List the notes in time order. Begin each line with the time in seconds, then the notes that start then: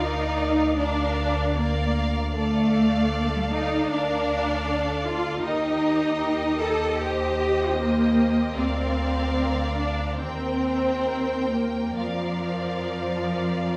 Already playing: D2 A#4 D5 F5
0.00 D#4
0.77 D4 A#4 D5 F5
1.57 A#3 A#4 D5 F5
2.34 A3 A4 D5 F5
3.20 A#3
3.27 A3
3.36 G3
3.45 A3
3.52 D#4
3.90 D2 D4 A#4 D5 F5
4.68 A4
5.05 F4
5.43 D#2 D#4 G4 A#4 D#5
6.60 A4
6.98 G4 C5 D#5
7.77 A#3
8.57 D2 C4 A#4 D5 F5
9.78 D4
10.19 D#2 C4 A#4 C5 G5
11.51 A#3
11.97 F2 F3 A#4 D5 F5